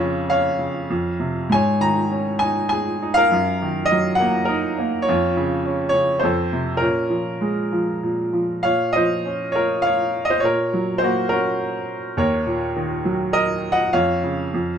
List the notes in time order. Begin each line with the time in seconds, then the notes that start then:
Already playing: F2 F4 C#5
0.00 C#3
0.28 C#4 C#5 F5
0.59 C#3
0.90 F2
1.20 C3
1.49 G#2 G#5
1.54 C#5
1.80 D#3 A#5
2.11 C#4
2.39 D#4 G#5
2.69 G#4 G#5
3.02 D#4
3.14 A#4 F5
3.31 F#2
3.62 D#3
3.85 D#5
3.92 F#3
4.15 F#5
4.20 A#3
4.45 D#4 A#4
4.79 A#3
5.02 C#5
5.08 F2 F4
5.37 C#3
5.65 C#4
5.89 C#5
5.94 C#3
6.19 F2 C5
6.24 A4
6.53 C3
6.77 A#2 A#4
6.82 C#4
7.10 F3
7.41 G#3
7.72 F3
8.03 A#2
8.33 F3
8.63 A#2 C#5 F5
8.93 F3 C5 D#5
9.26 C#4
9.52 F4 A#4 C#5
9.82 F5
9.87 C#5
10.25 D#5
10.30 C5
10.40 A#2 C#5
10.45 A#4
10.74 F#3
10.98 A#3 C5
11.04 F#4
11.29 C#4 F#4 A#4
12.17 D#2 A#4 C#5
12.46 A#2
12.76 D#3
13.05 F#3
13.33 A#4 D#5
13.72 D#5 F#5
13.93 F2 C#5 F5
14.23 C#3
14.54 F2